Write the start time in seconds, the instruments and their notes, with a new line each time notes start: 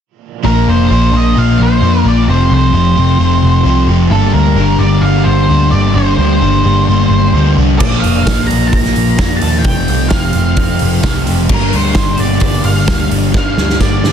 0.43 picked electric bass A#1, overdriven electric guitar A#2 F3 A#3 D4, lead electric guitar A#4
0.67 picked electric bass F1, distorted electric guitar F3 A#3, lead electric guitar C5
0.89 picked electric bass A#1, overdriven electric guitar A#2 F3 A#3 D4
1.12 picked electric bass A#1, overdriven electric guitar F3 A#3 D4
1.17 lead electric guitar D#5
1.35 picked electric bass A#1, overdriven electric guitar A#2 F3 A#3 D4, lead electric guitar F5
1.60 picked electric bass A#1, lead electric guitar C5
1.81 picked electric bass F2, overdriven electric guitar A#2 F3 A#3 D4
2.04 picked electric bass A#1, overdriven electric guitar F3 A#3 D4, lead electric guitar D5
2.28 picked electric bass F1, overdriven electric guitar F2 C3 F3 A3 C4, lead electric guitar C5
2.50 picked electric bass C2, distorted electric guitar C3 F3
2.54 lead electric guitar C5
2.73 picked electric bass F1, distorted electric guitar F2, overdriven electric guitar C3 F3 A3 C4
2.96 picked electric bass F1, distorted electric guitar C3, overdriven electric guitar F3 A3 C4
3.19 picked electric bass F1, overdriven electric guitar C3 F3 A3 C4
3.43 picked electric bass F1
3.64 picked electric bass C2, distorted electric guitar F2, overdriven electric guitar C3 F3 A3 C4
3.87 picked electric bass F1, distorted electric guitar C3, overdriven electric guitar A3 C4
3.91 overdriven electric guitar F3
4.10 picked electric bass G1, overdriven electric guitar G2 D3 G3 A#3, lead electric guitar A4
4.14 overdriven electric guitar D4
4.33 picked electric bass D2, distorted electric guitar D3 G3, lead electric guitar A#4
4.55 picked electric bass G1, distorted electric guitar G2, overdriven electric guitar D3 G3 A#3 D4
4.79 picked electric bass G1, overdriven electric guitar G3 A#3 D4, lead electric guitar D5
4.84 distorted electric guitar D3
5.01 picked electric bass G1, overdriven electric guitar D3 G3, lead electric guitar F5
5.06 overdriven electric guitar A#3 D4
5.24 picked electric bass G1, lead electric guitar C5
5.49 picked electric bass D2, distorted electric guitar G2, overdriven electric guitar D3 G3 A#3 D4
5.71 picked electric bass G1, distorted electric guitar D3, overdriven electric guitar G3 A#3 D4, lead electric guitar D5
5.92 picked electric bass G1, overdriven electric guitar G2 D3 G3 A#3 D4, lead electric guitar C5
6.15 picked electric bass D2, distorted electric guitar G3, lead electric guitar C5
6.19 distorted electric guitar D3
6.40 picked electric bass G1, distorted electric guitar G2, overdriven electric guitar D3 G3 A#3 D4
6.63 picked electric bass G1, overdriven electric guitar G3 A#3 D4
6.67 distorted electric guitar D3
6.88 picked electric bass G1, overdriven electric guitar D3 G3 A#3 D4
7.09 picked electric bass G1
7.32 picked electric bass D2, distorted electric guitar G2, overdriven electric guitar D3 G3 A#3
7.38 overdriven electric guitar D4
7.56 picked electric bass C2, overdriven electric guitar G3 A#3 D4
7.61 distorted electric guitar D3
7.79 picked electric bass A#1, overdriven electric guitar A#2 F3 A#3 D4, lead electric guitar D5, kick, crash
7.99 lead electric guitar F5
8.04 picked electric bass F1, distorted electric guitar F3 A#3, open hi-hat
8.27 picked electric bass A#1, overdriven electric guitar A#2 F3 A#3 D4, kick, snare, open hi-hat, tambourine
8.47 picked electric bass A#1, overdriven electric guitar A#3 D4, lead electric guitar A#5, open hi-hat
8.52 overdriven electric guitar F3
8.68 overdriven electric guitar A#2, lead electric guitar A#5
8.72 picked electric bass A#1, overdriven electric guitar F3 A#3 D4, kick, open hi-hat
8.85 snare
8.96 picked electric bass A#1, open hi-hat
9.17 picked electric bass F2, overdriven electric guitar A#2 F3 A#3 D4, kick, snare, open hi-hat, tambourine
9.37 overdriven electric guitar D4, lead electric guitar A5
9.41 picked electric bass D#2, overdriven electric guitar F3 A#3, open hi-hat
9.59 lead electric guitar G5
9.64 picked electric bass F1, overdriven electric guitar F2 C3 F3 A3 C4, kick, open hi-hat
9.88 picked electric bass C2, distorted electric guitar C3 F3, open hi-hat
10.09 distorted electric guitar F2, overdriven electric guitar C3 F3 A3, lead electric guitar F5, kick, snare, open hi-hat, tambourine
10.13 overdriven electric guitar C4
10.33 picked electric bass F1, overdriven electric guitar A3 C4, open hi-hat
10.37 distorted electric guitar C3, overdriven electric guitar F3
10.55 picked electric bass F1, overdriven electric guitar C3 F3 A3 C4, kick, open hi-hat
10.79 picked electric bass F1, open hi-hat
11.01 picked electric bass C2, distorted electric guitar F2, overdriven electric guitar C3 F3 A3 C4, kick, snare, open hi-hat, tambourine
11.24 overdriven electric guitar F3 A3 C4, open hi-hat
11.28 picked electric bass F1, distorted electric guitar C3
11.48 picked electric bass G1, overdriven electric guitar G2 D3 G3 A#3 D4, kick, crash
11.54 lead electric guitar A#4
11.73 picked electric bass D2, distorted electric guitar D3 G3, lead electric guitar C5, open hi-hat
11.93 picked electric bass G1, distorted electric guitar G2, overdriven electric guitar D3 G3 A#3 D4, kick, snare, open hi-hat, tambourine
12.17 picked electric bass G1, overdriven electric guitar G3 A#3 D4, lead electric guitar D5, open hi-hat
12.21 distorted electric guitar D3
12.40 picked electric bass G1, overdriven electric guitar D3 G3 A#3 D4, kick, open hi-hat
12.64 picked electric bass G1, lead electric guitar F5, open hi-hat
12.85 picked electric bass D2, distorted electric guitar G2, overdriven electric guitar D3 G3 A#3 D4, kick, snare, open hi-hat, tambourine
12.90 distorted electric guitar G3
13.10 picked electric bass G1, distorted electric guitar D3, overdriven electric guitar G3 A#3 D4, open hi-hat
13.32 picked electric bass G1, overdriven electric guitar G2 D3 G3 A#3 D4, kick, snare
13.37 lead electric guitar F5
13.57 picked electric bass D2, distorted electric guitar D3 G3, snare
13.70 snare
13.79 picked electric bass G1, distorted electric guitar G2, overdriven electric guitar D3 G3 A#3 D4, lead electric guitar D5, kick, snare, tambourine
14.02 picked electric bass G1, distorted electric guitar D3, overdriven electric guitar G3 A#3 D4, snare